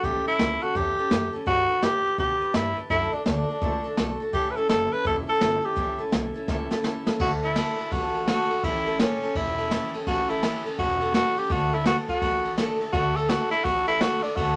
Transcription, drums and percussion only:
0.03 kick, open hi-hat
0.39 snare, open hi-hat
0.75 kick, open hi-hat
1.11 snare
1.47 kick, open hi-hat
1.82 snare
2.18 kick, open hi-hat
2.54 snare, open hi-hat
2.90 kick, open hi-hat
3.26 snare
3.62 kick, open hi-hat
3.97 snare
4.33 kick, open hi-hat
4.69 snare
5.05 kick, open hi-hat
5.41 snare
5.77 kick, open hi-hat
6.12 snare
6.48 kick, snare
6.71 snare
6.84 snare
7.07 snare
7.20 kick, crash
7.43 ride
7.56 snare, ride
7.78 ride
7.92 kick, ride
8.15 ride
8.27 snare, ride
8.50 ride
8.63 kick, ride
8.86 ride
8.99 snare, ride
9.22 ride
9.35 kick, ride
9.58 ride
9.71 snare, ride
9.94 ride
10.07 kick, ride
10.30 ride
10.43 snare, ride
10.66 ride
10.79 kick, ride
11.01 ride
11.14 snare, ride
11.37 ride
11.50 kick, ride
11.73 ride
11.86 snare, ride
12.09 kick, ride
12.22 kick, ride
12.44 ride
12.58 snare, ride
12.80 ride
12.93 kick, ride
13.16 ride
13.29 snare, ride
13.52 ride
13.65 kick, ride
13.87 ride
14.01 snare, ride
14.23 ride
14.37 kick, ride

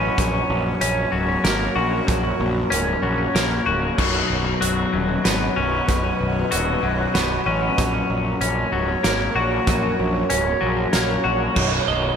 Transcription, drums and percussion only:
0.18 kick, closed hi-hat
0.81 closed hi-hat
1.45 snare, closed hi-hat
2.08 kick, closed hi-hat
2.72 closed hi-hat
3.36 snare, closed hi-hat
3.98 kick, crash
4.62 closed hi-hat
5.25 snare, closed hi-hat
5.89 kick, closed hi-hat
6.52 closed hi-hat
7.15 snare, closed hi-hat
7.78 kick, closed hi-hat
8.41 closed hi-hat
9.04 snare, closed hi-hat
9.67 kick, closed hi-hat
10.30 closed hi-hat
10.93 snare, closed hi-hat
11.56 kick, crash

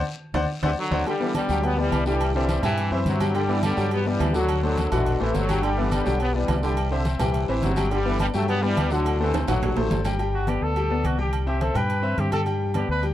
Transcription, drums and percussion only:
0.34 high conga, high timbale, long guiro
0.63 high conga, high timbale
0.92 high conga, high timbale, long guiro
1.06 high conga, low agogo, long guiro
1.21 high conga
1.35 high conga, low agogo, short guiro
1.49 high conga, short guiro
1.63 high conga, low agogo, long guiro
1.78 high conga
1.92 high conga, low agogo, short guiro
2.06 short guiro
2.20 high conga, low agogo, long guiro
2.35 high conga
2.49 high conga, low agogo, short guiro
2.63 low conga, low agogo, short guiro
2.77 high conga, low agogo, long guiro
2.92 high conga
3.06 high conga, low agogo, short guiro
3.20 high conga, low agogo, short guiro
3.34 high conga, low agogo, long guiro
3.49 high conga
3.63 high conga, low agogo, short guiro
3.77 high conga, short guiro
3.91 low agogo, long guiro
4.06 high conga
4.20 high conga, low timbale, low agogo, short guiro
4.34 high conga, short guiro
4.49 high conga, low agogo, long guiro
4.63 high conga
4.77 high conga, low agogo, short guiro
4.92 low conga, low agogo, short guiro
5.06 high conga, low conga, low agogo, long guiro
5.21 high conga
5.34 high conga, low timbale, low agogo, short guiro
5.49 high conga, low agogo, short guiro
5.63 high conga, low agogo, long guiro
5.78 high conga
5.92 high conga, low agogo, short guiro
6.06 high conga, short guiro
6.20 high conga, low agogo, long guiro
6.35 high conga
6.48 high conga, low timbale, low agogo, short guiro
6.63 short guiro
6.77 high conga, low agogo, long guiro
6.92 high conga
7.05 high conga, low agogo, short guiro
7.19 low conga, low agogo, short guiro
7.34 high conga, low agogo, long guiro
7.49 high conga
7.62 high conga, low timbale, low agogo, short guiro
7.76 high conga, low agogo, short guiro
7.91 low agogo, long guiro
8.05 high conga
8.20 high conga, low agogo, short guiro
8.34 high conga, short guiro
8.48 high conga, low agogo, long guiro
8.63 high conga
8.76 high conga, low agogo, short guiro
8.91 short guiro
9.05 low agogo, long guiro
9.20 high conga
9.33 high conga, high timbale, low agogo, short guiro
9.48 low conga, high timbale, low agogo, short guiro
9.62 high conga, low conga, low timbale, low agogo, long guiro
9.77 high conga, low timbale
9.90 high conga, low timbale, low agogo, short guiro
10.05 high conga, low timbale, low agogo, short guiro
10.19 high conga, low agogo
10.33 high conga
10.47 high conga, low agogo
10.62 high conga
10.76 high conga, low agogo
10.90 high conga
11.04 high conga, low agogo
11.18 high conga
11.33 high conga, low agogo
11.47 high conga
11.61 high conga, low agogo
11.75 low conga, low agogo
11.90 high conga, low agogo
12.04 high conga
12.18 high conga, low agogo
12.32 high conga, low agogo
12.46 high conga, low agogo
12.61 high conga
12.74 high conga, low agogo
12.89 high conga
13.03 high conga, low agogo

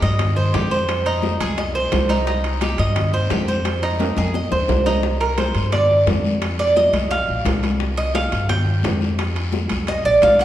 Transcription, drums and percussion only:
0.02 high conga, high timbale, short guiro
0.19 high bongo, high conga, low conga, high timbale, long guiro
0.37 high conga, low conga
0.54 high bongo, low bongo, high conga, high timbale, low timbale, short guiro
0.71 high conga, short guiro
0.88 high bongo, high conga, high timbale, long guiro
1.06 high bongo, high conga, high timbale
1.23 high bongo, high conga, low timbale, short guiro
1.41 high bongo, high conga, high timbale, short guiro
1.58 high bongo, high conga, high timbale, long guiro
1.75 high conga
1.92 high bongo, low bongo, high conga, high timbale, low timbale, short guiro
2.09 high bongo, high conga, high timbale, short guiro
2.27 high bongo, high conga, long guiro
2.44 high conga, high timbale
2.61 high bongo, high conga, high timbale, low timbale, short guiro
2.78 high conga, high timbale, short guiro
2.96 high bongo, high conga, low conga, high timbale, long guiro
3.14 high conga, low conga
3.30 high bongo, low bongo, high conga, high timbale, low timbale, short guiro
3.48 high conga, short guiro
3.65 high bongo, high conga, high timbale, long guiro
3.82 high bongo, high conga, high timbale
4.00 high bongo, high conga, high timbale, short guiro
4.17 high conga, high timbale, short guiro
4.34 high bongo, high conga, long guiro
4.52 low bongo, high conga
4.69 low bongo, high conga, low timbale, short guiro
4.86 low bongo, high conga, low timbale, short guiro
5.03 high bongo, high conga, long guiro
5.21 high conga, high timbale
5.38 high bongo, high conga, high timbale, low timbale, short guiro
5.55 high conga, high timbale, short guiro
5.72 high bongo, high conga, low conga, high timbale
5.90 high conga, low conga
6.07 high bongo, low bongo, high conga, high timbale, low timbale, short guiro
6.24 high conga, short guiro
6.42 high bongo, high conga, high timbale, long guiro
6.59 high bongo, high conga, high timbale
6.76 high bongo, high conga, low timbale, short guiro
6.93 high bongo, high conga, high timbale, short guiro
7.11 high bongo, high conga, high timbale, long guiro
7.28 high conga
7.45 high bongo, low bongo, high conga, high timbale, low timbale, short guiro
7.63 high bongo, high conga, high timbale, short guiro
7.80 high bongo, long guiro
7.98 high conga, high timbale
8.15 high bongo, high conga, high timbale, low timbale, short guiro
8.32 high conga, high timbale, short guiro
8.49 high bongo, high conga, low conga, high timbale, long guiro
8.66 high conga, low conga
8.83 high bongo, low bongo, high conga, high timbale, low timbale, short guiro
9.01 high conga, short guiro
9.18 high bongo, high conga, high timbale, long guiro
9.36 high bongo, high timbale
9.52 high bongo, high conga, low timbale, short guiro
9.69 high bongo, high conga, high timbale, short guiro
9.87 high bongo, high conga, high timbale
10.05 high conga
10.22 high bongo, low bongo, high conga, high timbale, low timbale, short guiro
10.39 high bongo, high conga, high timbale, short guiro

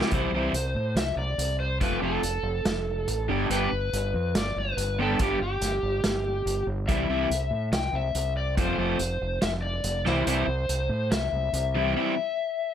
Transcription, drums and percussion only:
0.01 snare
0.11 kick, closed hi-hat
0.54 closed hi-hat
0.97 snare, closed hi-hat
1.39 closed hi-hat
1.81 kick, closed hi-hat
2.23 closed hi-hat
2.65 snare, closed hi-hat
3.08 closed hi-hat
3.51 closed hi-hat
3.93 closed hi-hat
4.35 snare, closed hi-hat
4.78 closed hi-hat
5.19 kick, closed hi-hat
5.62 snare, closed hi-hat
6.04 snare, closed hi-hat
6.47 closed hi-hat
6.89 kick, closed hi-hat
7.31 closed hi-hat
7.73 snare, closed hi-hat
8.15 closed hi-hat
8.58 kick, closed hi-hat
8.99 closed hi-hat
9.42 snare, closed hi-hat
9.84 closed hi-hat
10.05 snare
10.27 closed hi-hat
10.69 closed hi-hat
11.12 snare, closed hi-hat
11.54 closed hi-hat

